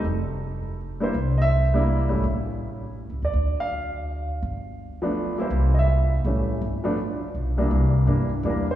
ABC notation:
X:1
M:3/4
L:1/8
Q:"Swing" 1/4=164
K:Cmix
V:1 name="Grand piano"
A4 z c- | c [_e=e]2 z3 | z4 z d- | d f2 z3 |
z4 z c- | c [_e=e]2 z3 | z6 | z4 B c |]
V:2 name="Grand piano"
z4 z [G,B,DE] | z3 [G,B,DE]2 [G,A,_DE] | z6 | z6 |
z3 [F,A,=B,D]2 [E,G,_B,E]- | [E,G,B,E]2 z2 [E,G,A,^C]2 | z [F,A,=B,D] z3 [C,,E,G,_B,D]- | [C,,E,G,B,D]2 [E,G,B,D] z [E,G,B,D] z |]
V:3 name="Upright bass" clef=bass
F,,,6 | C,,4- C,, _A,,, | A,,,4- (3A,,, ^C,, _E,, | D,,6 |
G,,,6 | C,,4 A,,,2 | G,,,4 =B,,,2 | C,,2 G,,2 E,,2 |]